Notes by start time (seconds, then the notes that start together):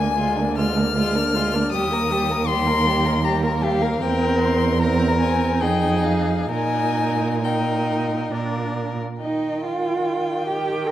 Already playing: D2 A#3 D4 G#5
0.16 G#3 F4
0.37 A#3 D4
0.57 G#3 F4 F6
0.76 A#3 D4
0.96 G#3 F4
1.15 A#3 D4
1.34 G#3 F4
1.53 A#3 D4
1.72 D#2 G3 G4 D#6
1.92 A#3 A#4
2.10 G3 G4
2.29 A#3 A#4
2.46 G3 G4 C6
2.67 A#3 A#4
2.86 G3 G4
3.05 A#3 A#4
3.24 G3 G4 A#5
3.43 A#3 A#4
3.61 G3 G4 F5
3.81 A#3 A#4
4.00 E2 C4 A#4 G5
4.39 C6
4.79 C4 A#4 A#5
5.20 C4 G#5
5.60 F2 D#4 G#4 G5
6.04 F5
6.50 A#2 D#4 A#4 G#5
7.43 D#4 A#4 G5
8.32 A#2 D4 A#4
9.20 D#3 D#4 D#5 G5
9.63 F4 F5
10.47 G4 G5
10.86 A#4 A#5